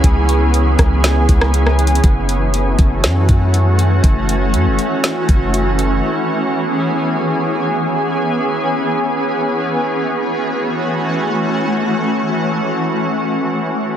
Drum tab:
HH |x-----x-----x-----x-----x-----x-----x-----x-x-x-|x-----x-----x-----x-----x-----x-----x-----x-----|x-----x-----x-----x-----x-----x-----x-----x-----|------------------------------------------------|
SD |------------------r-----o--------r-----r--------|------------------------o-----------------------|------------------------o-----------------------|------------------------------------------------|
BD |o-----------------o-----------o-----------------|o-----------------o-----------o-----------------|o-----------------------------o-----------------|------------------------------------------------|

HH |------------------------------------------------|------------------------------------------------|------------------------------------------------|
SD |------------------------------------------------|------------------------------------------------|------------------------------------------------|
BD |------------------------------------------------|------------------------------------------------|------------------------------------------------|